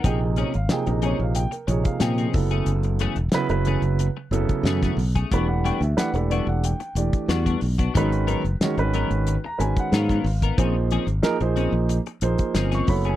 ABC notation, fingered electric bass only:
X:1
M:4/4
L:1/16
Q:1/4=91
K:A#phr
V:1 name="Fingered electric bass" clef=bass
A,,,3 G,,, z A,,,2 A,,,2 z A,,, z A,,2 F,,,2 | F,,,3 =E,,, z F,,,2 F,,,2 z F,,, z F,,2 B,,,2 | =E,,,3 =D,, z E,,,2 E,,,2 z E,,, z =E,,2 B,,,2 | G,,,3 F,,, z G,,,2 G,,,2 z G,,, z G,,2 G,,,2 |
A,,,3 G,,, z A,,,2 A,,,2 z A,,, z =G,,,2 F,,,2 |]